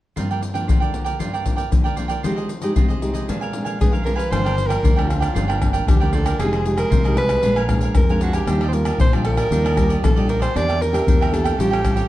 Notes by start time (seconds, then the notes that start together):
0.16 G2 F3 A#3 D4 F4 A#4 D5 G5, pandeiro, shaker, surdo
0.31 A#4 D5 G5, pandeiro, shaker
0.42 muted cavaquinho stroke, pandeiro, shaker
0.54 F3 A#3 D4 A#4 D5 G5, pandeiro, shaker
0.68 D3 F4 A#4 D5 G5, pandeiro, shaker, surdo
0.80 A#4 D5 G5, pandeiro, shaker
0.94 F3 A#3 D4, pandeiro
1.04 A#4 D5 G5, pandeiro, shaker
1.19 G2 F4 A#4 D5 G5, pandeiro, shaker, surdo
1.33 A#4 D5 G5, pandeiro, shaker
1.46 F3 A#3 D4, pandeiro, shaker, surdo
1.56 A#4 D5 G5, pandeiro, shaker
1.71 D3 F3 A#3 D4, muted cavaquinho stroke, pandeiro, shaker, surdo
1.84 A#4 D5 G5, pandeiro, shaker
1.96 F3 A#3 D4 F4 A#4 D5 G5, pandeiro, shaker
2.08 A#4 D5 G5, pandeiro, shaker
2.23 F3 G#3 D#4 F4 G4 G#4 C5 D#5, pandeiro, shaker, surdo
2.36 G#4 C5 D#5, pandeiro, shaker
2.49 muted cavaquinho stroke, pandeiro, shaker
2.62 G#3 D#4 G4 G#4 C5 D#5, pandeiro, shaker
2.76 C3 G#3 D#4 F4 G4 G#4 C5 D#5, pandeiro, shaker, surdo
2.89 G#4 C5 D#5, pandeiro, shaker
3.02 G#3 D#4 G4, pandeiro, shaker
3.14 G#4 C5 D#5, pandeiro, shaker
3.28 A#2 G#3 B3 D4 A#4 F5 G#5, pandeiro, shaker, surdo
3.41 A#4 F5 G#5, pandeiro, shaker
3.53 G#3 B3 D4, pandeiro
3.65 A#4 F5 G#5, pandeiro, shaker
3.79 F3 G#3 B3 G#4, muted cavaquinho stroke, pandeiro, shaker, surdo
3.83 D4
3.92 A#4 F5 G#5, pandeiro, shaker
4.03 G#3 B3 D4 A#4 F5 G#5, pandeiro
4.16 A#4 B4 F5 G#5, pandeiro, shaker
4.31 G1 G2 F3 A#3 D4 F4 A#4 C5 D5 G5, pandeiro, tamborim, shaker, surdo
4.45 A#4 D5 G5, pandeiro, tamborim, shaker
4.56 F3 A#3 D4, muted cavaquinho stroke, pandeiro
4.66 A#4 D5 G5, pandeiro, tamborim, shaker
4.71 A#4
4.83 D2 D3 F4 A#4 D5 G5, pandeiro, shaker, surdo
4.96 F3 A#3 D4 A#4 D5 G5, pandeiro, tamborim, shaker
5.03 G4
5.08 F4, pandeiro, tamborim, shaker
5.20 A#4 D5 G5, pandeiro, tamborim, shaker
5.34 G1 G2 F3 A#3 D4 F4 A#4 D5 G5, pandeiro, shaker, surdo
5.48 A#4 D5 G5, pandeiro, tamborim, shaker
5.61 F3 A#3 D4, pandeiro, tamborim, surdo
5.73 A#4 D5 G5, pandeiro, shaker
5.87 D2 D3 G4, muted cavaquinho stroke, pandeiro, tamborim, shaker, surdo
6.00 F3 A#3 D4 A#4 D5 G5, pandeiro, shaker
6.12 F4 A4 A#4 D5 G5, pandeiro
6.25 A#4 D5 G5, pandeiro, tamborim, shaker
6.39 F1 F3 G#3 D#4 F4 G4 G#4 C5 D#5, pandeiro, tamborim, shaker, surdo
6.53 G#4 C5 D#5, pandeiro, tamborim, shaker
6.65 G#3 D#4 G4, muted cavaquinho stroke, pandeiro, shaker
6.77 G#4 A#4 C5 D#5, pandeiro, tamborim, shaker
6.90 C2 C3 F4 G#4 C5 D#5, pandeiro, shaker, surdo
7.04 G#3 D#4 G4 G#4 C5 D#5, pandeiro, tamborim, shaker
7.17 B4, pandeiro, tamborim
7.28 G#4 C5 D#5, pandeiro, tamborim, shaker
7.43 A#1 A#2 G#3 B3 D4 A#4 F5 G#5, pandeiro, shaker, surdo
7.56 A#4 F5 G#5, pandeiro, tamborim, shaker
7.69 G#3 B3 D4, pandeiro, tamborim, surdo
7.81 A#4 F5 G#5, pandeiro, shaker
7.95 F2 F3 A#4, muted cavaquinho stroke, pandeiro, tamborim, shaker, surdo
8.09 G#3 B3 D4 A#4 F5 G#5, pandeiro, shaker
8.21 D4 F#4 A#4 F5 G#5, pandeiro, shaker
8.33 G4 A#4 F5 G#5, pandeiro, tamborim, shaker
8.47 D#2 D#3 G3 D4 F4 G4 D5 D#5, pandeiro, tamborim, shaker, surdo
8.61 G4 D5 D#5, pandeiro, tamborim, shaker
8.68 C5
8.73 G3 D4 F4 A#4, muted cavaquinho stroke, pandeiro, shaker
8.85 G4 D5 D#5, pandeiro, tamborim, shaker
8.98 A#1 A#2 D4 G4 C5 D5 D#5, pandeiro, shaker, surdo
9.12 G3 D4 F4 G4 D5 D#5, pandeiro, tamborim, shaker
9.25 A#4, pandeiro, tamborim
9.37 G4 D5 D#5, pandeiro, tamborim, shaker
9.51 D#2 D#3 G3 D4 F4 G4 D5 D#5, pandeiro, shaker, surdo
9.65 G4 D5 D#5, pandeiro, tamborim, shaker
9.76 G3 D4 F4, pandeiro, tamborim, shaker, surdo
9.89 G4 D5 D#5, pandeiro, shaker
10.02 A#1 A#2 A4, muted cavaquinho stroke, pandeiro, tamborim, shaker, surdo
10.16 G3 D4 F4 G4 D5 D#5, pandeiro, shaker
10.28 D4 G4 A#4 D5 D#5, pandeiro
10.40 G4 C5 D5 D#5, pandeiro, tamborim, shaker
10.54 E2 E3 A#3 D4 G4 A#4 D5 E5 G5, pandeiro, tamborim, shaker, surdo
10.68 A#4 E5 G5, pandeiro, tamborim, shaker
10.80 A#4, muted cavaquinho stroke, pandeiro
10.92 A#3 D4 G4 A#4 E5 G5, pandeiro, tamborim, shaker
11.07 E2 E3 D4 A#4 E5 G5, pandeiro, shaker, surdo
11.21 A#4 E5 G5, pandeiro, tamborim, shaker
11.32 A#3 D4 G4 A4, pandeiro, tamborim, shaker
11.44 A#4 E5 G5, pandeiro, tamborim, shaker
11.58 A1 A2 G3 C#4 F4 G4 A4 C#5 G5, pandeiro, shaker, surdo
11.71 A4 C#5 G5, pandeiro, tamborim, shaker
11.84 G3 C#4 F4, pandeiro, tamborim, shaker, surdo
11.96 A4 C#5 G5, pandeiro, shaker